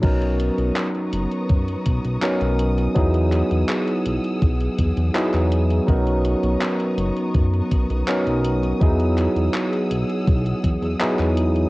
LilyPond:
<<
  \new Staff \with { instrumentName = "String section" } { \time 4/4 \key b \major \tempo 4 = 82 <b ais'' cis''' dis'''>1 | <gis' fis'' e'''>1 | <b ais'' cis''' dis'''>1 | <gis' fis'' e'''>1 | }
  \new Staff \with { instrumentName = "Tine electric piano" } { \time 4/4 \key b \major <fis b cis' dis' ais'>2. <fis b cis' dis' ais'>4 | <fis b dis' e' gis'>2. <fis b dis' e' gis'>4 | <fis b cis' dis' ais'>2. <fis b cis' dis' ais'>4 | <fis b dis' e' gis'>2. <fis b dis' e' gis'>4 | }
  \new Staff \with { instrumentName = "Analog synth bass" } { \clef bass \time 4/4 \key b \major b,,8. b,,16 r8 fis,,16 r16 fis,16 r16 b,,16 b,,16 r16 b,,8. | e,8. e,16 r8 b,,16 r16 b,,16 r16 e,16 e,16 r16 e,8. | b,,8. b,,16 r8 fis,,16 r16 fis,16 r16 b,,16 b,,16 r16 b,,8. | e,8. e,16 r8 b,,16 r16 b,,16 r16 e,16 e,16 r16 e,8. | }
  \new DrumStaff \with { instrumentName = "Drums" } \drummode { \time 4/4 <cymc hh bd>16 hh16 hh16 hh16 <hc hh>16 hh16 hh16 hh16 <hh bd>16 hh16 <hh bd>16 hh16 <hc hh>16 hh16 hh16 hh16 | <hh bd>16 hh16 <hc hh>16 hh16 <hc hh>16 hh16 hh16 hh16 <hh bd>16 hh16 <hh bd>16 hh16 <hc hh>16 <hc hh>16 hh16 hh16 | <hh bd>16 hh16 hh16 hh16 <hc hh>16 hh16 hh16 hh16 <hh bd>16 hh16 <hh bd>16 hh16 <hc hh>16 hh16 hh16 hh16 | <hh bd>16 hh16 <hc hh>16 hh16 <hc hh>16 hh16 hh16 hh16 <hh bd>16 hh16 <hh bd>16 hh16 <hc hh>16 <hc hh>16 hh16 hh16 | }
>>